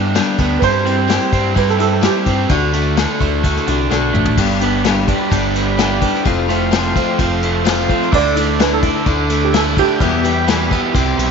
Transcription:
Already playing: picked electric bass G2, overdriven electric guitar D3 G3 B3, steel-string acoustic guitar G3 B3 D4 G4
0.14 steel-string acoustic guitar G2 D3 G3 B3 D4 G4, snare, ride
0.38 picked electric bass D2, steel-string acoustic guitar G3 B3 D4 G4, kick, ride
0.59 picked electric bass G2, steel-string acoustic guitar G3 C4, upright piano B4, kick, ride
0.63 steel-string acoustic guitar E4 G4, upright piano C5
0.85 steel-string acoustic guitar C4 E4 G4, ride
1.08 steel-string acoustic guitar G3 C4 E4 G4, snare, ride
1.21 snare
1.32 picked electric bass G2, overdriven electric guitar C4, kick, ride
1.54 steel-string acoustic guitar G3 C4 E4 G4, upright piano B4, kick, ride
1.69 upright piano A4, snare
1.78 steel-string acoustic guitar C4 E4 G4, upright piano A4, ride
1.93 upright piano A4
2.01 steel-string acoustic guitar G3 C4 E4 G4, upright piano G4, snare, ride
2.25 picked electric bass G2, steel-string acoustic guitar C4 E4 G4, kick, ride
2.49 picked electric bass D2, steel-string acoustic guitar D3 A3 D4 F#4, kick, ride
2.73 steel-string acoustic guitar A3 D4 F#4, ride
2.97 steel-string acoustic guitar D3 A3 D4 F#4, snare, ride
3.20 picked electric bass D2, overdriven electric guitar A3, kick, ride
3.43 steel-string acoustic guitar D3 A3 D4 F#4, kick, ride
3.56 snare
3.67 picked electric bass C2, steel-string acoustic guitar A3 D4 F#4, ride
3.90 picked electric bass B1, steel-string acoustic guitar D3 A3 D4 F#4, snare
4.14 picked electric bass A1, steel-string acoustic guitar A3 D4 F#4, mid tom
4.25 floor tom
4.37 picked electric bass G1, steel-string acoustic guitar G2 D3 G3 B3 D4 G4, tonewheel organ G4 D5 B5, kick, crash
4.61 steel-string acoustic guitar G3 B3 D4 G4, ride
4.84 steel-string acoustic guitar G2 D3 G3 B3 D4 G4, snare, ride
5.07 steel-string acoustic guitar G3 B3 D4 G4, kick, ride
5.30 picked electric bass G1, steel-string acoustic guitar G3 B3 D4 G4, kick, ride
5.55 overdriven electric guitar B3, ride
5.77 steel-string acoustic guitar G2 D3 G3 B3 D4 G4, snare, ride
6.01 steel-string acoustic guitar G3 B3 D4 G4, kick, ride
6.15 snare
6.25 picked electric bass F1, steel-string acoustic guitar F2 C3 F3 A3 C4 F4, tonewheel organ A4 F5 C6, kick, ride
6.48 steel-string acoustic guitar F3 A3 C4 F4, ride
6.71 steel-string acoustic guitar F2 C3 F3 A3 C4 F4, snare, ride
6.95 steel-string acoustic guitar F3 A3 C4 F4, kick, ride
7.18 picked electric bass F1, steel-string acoustic guitar F3 A3 C4 F4, kick, ride
7.43 overdriven electric guitar A3, ride
7.64 steel-string acoustic guitar F2 C3 F3 A3 C4 F4, snare, ride
7.89 steel-string acoustic guitar F3 A3 C4 F4, kick, ride
8.02 snare
8.12 picked electric bass D2, steel-string acoustic guitar D3 A3 D4 E4, upright piano D5, tonewheel organ E5 D6, kick, crash
8.35 steel-string acoustic guitar A3 D4 E4, ride
8.59 steel-string acoustic guitar D3 A3 D4 E4, upright piano B4, snare, ride
8.73 upright piano A4
8.83 steel-string acoustic guitar A3 D4 E4, kick, ride
9.06 picked electric bass D2, steel-string acoustic guitar D3 A3 D4 E4, kick, ride
9.30 overdriven electric guitar A3, ride
9.44 upright piano G4
9.54 steel-string acoustic guitar D3 A3 D4 E4, upright piano A4, snare, ride
9.77 steel-string acoustic guitar A3 D4 E4, upright piano G4, kick, ride
10.00 picked electric bass E2, steel-string acoustic guitar E2 B2 E3 G3 B3 G4, tonewheel organ G4 B5, kick, ride
10.24 steel-string acoustic guitar E3 G3 B3 G4, ride
10.48 steel-string acoustic guitar E2 B2 E3 G3 B3 G4, snare, ride
10.70 steel-string acoustic guitar E3 G3 B3 G4, kick, ride
10.93 picked electric bass C2, overdriven electric guitar C3, steel-string acoustic guitar E3 G3 C4 G4, tonewheel organ C6, kick, ride
11.18 picked electric bass B1, overdriven electric guitar G3, ride

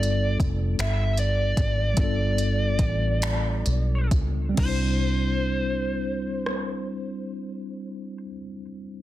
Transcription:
Already playing: fingered electric bass G1, tine electric piano G3 B3 D4 F4 A4, lead electric guitar D5
0.03 closed hi-hat
0.40 fingered electric bass F1, kick, closed hi-hat
0.79 fingered electric bass G1, lead electric guitar E5, finger snap, closed hi-hat
1.17 lead electric guitar D5, closed hi-hat
1.57 fingered electric bass G#1, kick, closed hi-hat
1.94 fingered electric bass G1, tine electric piano G3 B3, kick, closed hi-hat
1.99 tine electric piano D4 F4, lead electric guitar D5
2.04 tine electric piano A4
2.38 closed hi-hat
2.79 fingered electric bass A1, kick, closed hi-hat
3.22 finger snap, closed hi-hat
3.66 fingered electric bass B1, closed hi-hat
4.11 fingered electric bass C#2, kick, closed hi-hat
4.49 tine electric piano G3
4.54 fingered electric bass C2, tine electric piano C4, kick, crash
4.59 tine electric piano D4, lead electric guitar C5
4.64 tine electric piano E4
4.69 tine electric piano C5
6.46 cross-stick

